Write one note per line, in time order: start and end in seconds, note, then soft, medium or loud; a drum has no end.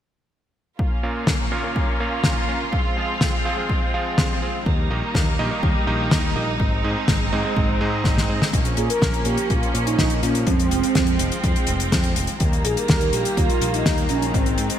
0.79 2.71 A#3 medium
0.79 2.71 C#4 medium
0.79 4.62 F4 medium
0.79 kick loud
1.03 1.25 A#2 medium
1.03 1.25 C#4 medium
1.03 1.25 F4 medium
1.03 1.25 A#4 medium
1.03 1.25 F5 medium
1.27 kick loud
1.27 snare loud
1.52 1.61 A#2 medium
1.52 1.61 C#4 medium
1.52 1.61 F4 medium
1.52 1.61 A#4 medium
1.52 1.61 F5 medium
1.64 1.97 A#2 medium
1.64 1.97 C#4 medium
1.64 1.97 F4 medium
1.64 1.97 A#4 medium
1.64 1.97 F5 medium
1.76 kick loud
2.00 2.46 A#2 medium
2.00 2.46 C#4 medium
2.00 2.46 F4 medium
2.00 2.46 A#4 medium
2.00 2.46 F5 medium
2.24 kick loud
2.24 snare loud
2.49 2.62 C#4 medium
2.49 2.62 F4 medium
2.49 2.62 A#4 medium
2.49 2.62 F5 medium
2.73 4.64 G#3 medium
2.73 4.64 C4 medium
2.73 kick loud
2.97 3.18 F3 medium
2.97 3.18 C4 medium
2.97 3.18 F4 medium
2.97 3.18 G#4 medium
2.97 3.18 F5 medium
3.21 kick loud
3.21 snare loud
3.45 3.55 F3 medium
3.45 3.55 C4 medium
3.45 3.55 F4 medium
3.45 3.55 G#4 medium
3.45 3.55 F5 loud
3.58 3.91 F3 medium
3.58 3.91 C4 medium
3.58 3.91 F4 medium
3.58 3.91 G#4 medium
3.58 3.91 F5 medium
3.70 kick loud
3.94 4.39 F3 medium
3.94 4.39 C4 medium
3.94 4.39 F4 medium
3.94 4.39 G#4 medium
3.94 4.39 F5 loud
4.18 kick loud
4.18 snare loud
4.42 4.56 C4 medium
4.42 4.56 F4 medium
4.42 4.56 G#4 medium
4.42 4.56 F5 medium
4.66 4.87 D#2 medium
4.66 6.58 G3 medium
4.66 6.58 A#3 medium
4.66 8.50 D#4 medium
4.66 kick loud
4.90 5.01 A#1 medium
4.90 5.12 D#3 medium
4.90 5.12 A#3 medium
4.90 5.12 D#4 medium
4.90 5.12 G4 medium
4.90 5.12 D#5 medium
5.15 5.36 D#2 medium
5.15 kick loud
5.15 snare loud
5.39 5.49 A#1 medium
5.39 5.48 D#3 medium
5.39 5.48 A#3 medium
5.39 5.48 D#4 medium
5.39 5.48 G4 medium
5.39 5.48 D#5 loud
5.51 5.84 D#3 medium
5.51 5.84 A#3 medium
5.51 5.84 D#4 medium
5.51 5.84 G4 medium
5.51 5.84 D#5 medium
5.63 5.74 D#2 medium
5.63 kick loud
5.87 6.08 A#1 medium
5.87 6.33 D#3 medium
5.87 6.33 A#3 medium
5.87 6.33 D#4 medium
5.87 6.33 G4 medium
5.87 6.33 D#5 loud
6.11 6.33 D#2 medium
6.11 kick loud
6.11 snare loud
6.36 6.57 A#1 medium
6.36 6.49 A#3 medium
6.36 6.49 D#4 medium
6.36 6.49 G4 medium
6.36 6.49 D#5 medium
6.60 6.81 G#1 medium
6.60 8.52 G#3 medium
6.60 8.52 C4 medium
6.60 kick loud
6.84 6.95 G#2 medium
6.84 7.06 G#2 medium
6.84 7.06 C4 medium
6.84 7.06 D#4 medium
6.84 7.06 G#4 medium
6.84 7.06 D#5 medium
7.08 7.29 G#1 medium
7.08 kick loud
7.08 snare loud
7.32 7.43 G#2 medium
7.32 7.42 G#2 loud
7.32 7.42 C4 medium
7.32 7.42 D#4 medium
7.32 7.42 G#4 medium
7.32 7.42 D#5 loud
7.45 7.78 G#2 medium
7.45 7.78 C4 medium
7.45 7.78 D#4 medium
7.45 7.78 G#4 medium
7.45 7.78 D#5 medium
7.57 7.78 G#1 medium
7.57 kick loud
7.81 8.02 G#2 medium
7.81 8.26 G#2 medium
7.81 8.26 C4 medium
7.81 8.26 D#4 medium
7.81 8.26 G#4 medium
7.81 8.26 D#5 loud
8.04 8.26 G#1 medium
8.04 kick loud
8.04 snare medium
8.18 snare medium
8.29 8.40 G#2 medium
8.29 8.43 C4 medium
8.29 8.43 D#4 medium
8.29 8.43 G#4 medium
8.29 8.43 D#5 medium
8.42 snare medium
8.53 8.74 A#1 medium
8.53 12.37 F3 medium
8.53 10.45 A#3 medium
8.53 10.45 C#4 medium
8.53 kick loud
8.53 closed hi-hat medium
8.65 closed hi-hat medium
8.77 8.88 A#2 medium
8.77 8.89 G#4 loud
8.77 closed hi-hat medium
8.89 9.27 A#4 loud
8.89 closed hi-hat medium
9.02 9.23 A#1 medium
9.02 kick loud
9.02 snare loud
9.02 closed hi-hat medium
9.14 closed hi-hat medium
9.25 9.36 A#2 medium
9.25 9.51 G4 loud
9.25 closed hi-hat medium
9.38 closed hi-hat medium
9.50 9.61 A#1 medium
9.50 9.84 F4 loud
9.50 kick loud
9.50 closed hi-hat medium
9.63 closed hi-hat medium
9.74 9.95 A#2 medium
9.74 closed hi-hat medium
9.86 10.20 D#4 loud
9.86 closed hi-hat medium
9.98 10.20 A#1 medium
9.98 kick loud
9.98 snare loud
9.98 closed hi-hat medium
10.10 closed hi-hat medium
10.22 10.44 A#2 loud
10.22 10.47 C#4 medium
10.22 closed hi-hat medium
10.35 closed hi-hat medium
10.47 10.68 F2 medium
10.47 12.39 G#3 medium
10.47 11.40 C4 medium
10.47 12.39 C4 medium
10.47 kick loud
10.47 closed hi-hat medium
10.60 closed hi-hat medium
10.71 10.82 F1 medium
10.71 closed hi-hat medium
10.83 closed hi-hat soft
10.95 11.16 F2 medium
10.95 kick loud
10.95 snare loud
10.95 closed hi-hat medium
11.07 closed hi-hat soft
11.19 11.30 F1 medium
11.19 closed hi-hat loud
11.32 closed hi-hat soft
11.44 11.54 F2 medium
11.44 kick loud
11.44 closed hi-hat medium
11.56 closed hi-hat medium
11.67 11.89 F1 medium
11.67 closed hi-hat medium
11.80 closed hi-hat medium
11.92 12.13 F2 medium
11.92 kick loud
11.92 snare loud
11.92 closed hi-hat medium
12.04 closed hi-hat medium
12.16 12.27 F1 medium
12.16 closed hi-hat loud
12.27 closed hi-hat medium
12.40 12.62 D#2 loud
12.40 14.79 D#3 medium
12.40 14.32 G3 medium
12.40 14.32 A#3 medium
12.40 kick loud
12.40 closed hi-hat medium
12.53 closed hi-hat soft
12.65 12.75 A#1 medium
12.65 12.77 G#4 loud
12.65 closed hi-hat medium
12.77 13.14 A#4 loud
12.77 closed hi-hat medium
12.88 13.10 D#2 medium
12.88 kick loud
12.88 snare loud
12.88 closed hi-hat medium
13.01 closed hi-hat medium
13.12 13.24 A#1 medium
13.12 13.38 G4 loud
13.12 closed hi-hat medium
13.25 closed hi-hat medium
13.37 13.48 D#2 medium
13.37 13.74 F4 loud
13.37 kick loud
13.37 closed hi-hat medium
13.50 closed hi-hat medium
13.61 13.82 A#1 medium
13.61 closed hi-hat loud
13.73 14.07 D#4 loud
13.73 closed hi-hat medium
13.86 14.07 D#2 medium
13.86 kick loud
13.86 snare loud
13.86 closed hi-hat medium
13.98 closed hi-hat medium
14.09 14.31 A#1 medium
14.09 14.32 C#4 medium
14.09 closed hi-hat medium
14.22 closed hi-hat medium
14.34 14.55 G#1 loud
14.34 14.79 G#3 medium
14.34 14.79 C4 medium
14.34 kick loud
14.34 closed hi-hat medium
14.46 closed hi-hat soft
14.58 14.69 G#2 medium
14.58 closed hi-hat medium
14.70 closed hi-hat medium